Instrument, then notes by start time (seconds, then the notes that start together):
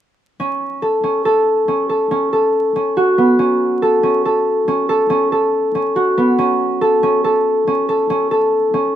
harp
0.40 C#4
0.82 A4
1.04 C#4
1.25 A4
1.68 C#4
1.89 A4
2.11 C#4
2.33 A4
2.76 C#4
2.97 F#4
3.18 B3
3.39 C#4
3.82 A4
4.03 C#4
4.25 A4
4.68 C#4
4.89 A4
5.10 C#4
5.32 A4
5.75 C#4
5.96 F#4
6.18 B3
6.39 C#4
6.81 A4
7.03 C#4
7.24 A4
7.67 C#4
7.89 A4
8.10 C#4
8.31 A4
8.74 C#4